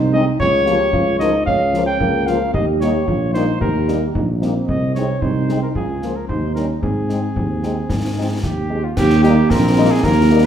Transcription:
0.00 0.31 C2 medium
0.00 0.41 D#4 medium
0.13 0.23 G#3 medium
0.13 0.22 C4 medium
0.13 0.22 D#4 medium
0.13 0.25 D#5 medium
0.39 0.84 C#2 medium
0.39 0.68 F4 medium
0.39 1.16 C#5 loud
0.39 concert bass drum medium
0.66 0.76 F3 medium
0.66 0.76 A#3 medium
0.66 0.76 F4 soft
0.66 0.93 G4 medium
0.66 snare soft
0.93 1.38 C#2 medium
0.93 1.18 F4 medium
0.93 concert bass drum medium
1.19 1.30 F3 medium
1.19 1.29 A#3 medium
1.19 1.44 D#4 medium
1.19 1.29 F4 medium
1.19 1.45 D#5 medium
1.19 snare soft
1.46 1.91 C#2 medium
1.46 1.97 C#4 medium
1.46 1.84 F5 medium
1.46 concert bass drum medium
1.73 1.83 F3 medium
1.73 1.83 A#3 medium
1.73 1.83 F4 soft
1.73 snare soft
1.86 2.28 G5 medium
2.00 2.40 C#2 medium
2.00 2.50 A#3 medium
2.00 concert bass drum medium
2.27 2.37 F3 medium
2.27 2.37 A#3 medium
2.27 2.37 F4 medium
2.27 2.53 F5 medium
2.27 snare soft
2.54 2.98 D#2 medium
2.54 3.08 G4 medium
2.54 2.66 D#5 medium
2.54 concert bass drum medium
2.80 2.91 G3 soft
2.80 2.91 A#3 medium
2.80 2.91 D#4 medium
2.80 3.30 C#5 medium
2.80 snare soft
3.07 3.52 A#1 medium
3.07 3.33 F4 medium
3.07 concert bass drum medium
3.34 3.44 G3 medium
3.34 3.44 A#3 soft
3.34 3.62 D#4 medium
3.34 3.44 D#4 medium
3.34 3.59 C5 medium
3.34 snare soft
3.60 4.06 D#2 medium
3.60 4.15 G4 medium
3.60 4.11 A#4 medium
3.60 concert bass drum medium
3.88 3.98 G3 soft
3.88 3.98 A#3 soft
3.88 3.98 D#4 soft
3.88 snare soft
4.15 4.59 A#1 medium
4.15 4.27 D#4 medium
4.15 concert bass drum medium
4.41 4.51 G3 soft
4.41 4.51 A#3 soft
4.41 5.18 C4 medium
4.41 4.51 D#4 soft
4.41 snare soft
4.67 5.13 C2 soft
4.67 4.93 D#5 medium
4.67 concert bass drum medium
4.95 5.05 G#3 soft
4.95 5.05 C4 soft
4.95 5.05 D#4 soft
4.95 5.23 C#5 medium
4.95 snare soft
5.21 5.66 C2 medium
5.21 5.72 D#4 medium
5.21 5.62 C5 medium
5.21 concert bass drum medium
5.49 5.59 G#3 soft
5.49 5.58 C4 soft
5.49 5.58 D#4 soft
5.49 snare soft
5.63 5.68 A#4 medium
5.75 6.20 C#2 soft
5.75 6.08 F4 soft
5.75 6.17 G#4 medium
5.75 concert bass drum medium
6.02 6.12 F3 soft
6.02 6.12 A#3 soft
6.02 6.12 F4 soft
6.02 snare soft
6.16 6.27 A#4 soft
6.28 6.73 D#2 soft
6.28 6.78 D#4 medium
6.28 6.53 C5 medium
6.28 concert bass drum medium
6.55 6.65 G3 soft
6.55 6.65 C#4 soft
6.55 6.65 D#4 soft
6.55 6.67 A#4 medium
6.55 snare soft
6.81 7.27 G#2 soft
6.81 8.66 C4 soft
6.81 8.39 G#4 medium
6.81 concert bass drum medium
7.09 7.19 G#3 soft
7.09 7.19 C4 soft
7.09 7.19 D#4 soft
7.09 snare soft
7.36 7.81 D#2 soft
7.36 concert bass drum medium
7.63 7.72 G#3 soft
7.63 7.72 C4 soft
7.63 7.72 D#4 soft
7.63 snare soft
7.89 8.34 G#2 soft
7.89 concert bass drum medium
7.89 snare medium
8.16 8.26 G#3 soft
8.16 8.26 C4 soft
8.16 8.26 D#4 soft
8.42 8.88 D#2 soft
8.42 8.86 G4 medium
8.42 concert bass drum medium
8.42 snare soft
8.70 8.80 G#3 soft
8.70 8.80 C4 soft
8.70 8.80 D#4 soft
8.84 8.98 F4 medium
8.97 9.41 D#2 medium
8.97 9.47 A#3 medium
8.97 9.23 G4 loud
8.97 concert bass drum medium
8.97 snare medium
8.97 crash medium
9.10 snare medium
9.23 9.33 G3 medium
9.23 9.33 A#3 medium
9.23 9.33 D#4 medium
9.23 9.52 G4 medium
9.23 snare medium
9.50 9.90 A#1 medium
9.50 10.00 C4 medium
9.50 9.92 A#4 loud
9.50 concert bass drum medium
9.50 snare medium
9.77 9.86 G3 medium
9.77 9.87 A#3 medium
9.77 9.87 D#4 medium
9.91 10.05 G#4 loud
10.03 10.46 D#2 medium
10.03 10.46 A#3 medium
10.03 10.46 A#4 loud
10.03 concert bass drum medium
10.03 snare medium
10.30 10.40 G3 medium
10.30 10.40 A#3 medium
10.30 10.40 D#4 medium

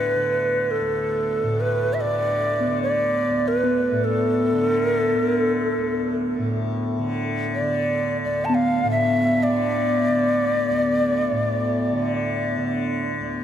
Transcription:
0.00 0.80 D2 soft
0.00 1.43 A2 soft
0.00 0.15 D3 soft
0.00 0.72 B4 medium
0.15 2.05 D3 soft
0.71 1.62 A4 medium
0.81 3.29 D2 soft
1.43 3.91 A2 soft
1.60 1.95 B4 medium
1.94 2.02 E5 medium
2.01 2.67 D3 soft
2.01 2.82 D5 medium
2.60 3.62 B3 soft
2.67 4.53 D3 soft
2.83 3.49 D5 medium
3.30 5.77 D2 soft
3.48 4.06 B4 medium
3.64 8.48 B3 soft
3.92 6.38 A2 soft
4.04 4.79 A4 medium
4.53 5.16 D3 soft
4.79 4.99 A#4 medium
4.99 5.21 A4 medium
5.16 6.99 D3 soft
5.21 5.42 A#4 medium
5.42 6.16 A4 medium
5.77 8.24 D2 soft
6.39 8.84 A2 soft
6.99 7.61 D3 soft
7.55 8.18 D5 medium
7.61 9.48 D3 soft
8.24 10.70 D2 soft
8.24 8.46 D5 medium
8.45 8.56 A5 soft
8.49 13.44 B3 soft
8.55 8.90 F5 medium
8.84 11.31 A2 soft
8.91 9.45 E5 medium
9.43 12.50 D5 medium
9.48 10.09 D3 soft
10.09 11.92 D3 soft
10.70 13.20 D2 soft
11.32 13.44 A2 soft
11.92 12.58 D3 soft
12.58 13.44 D3 soft
13.21 13.44 D2 soft

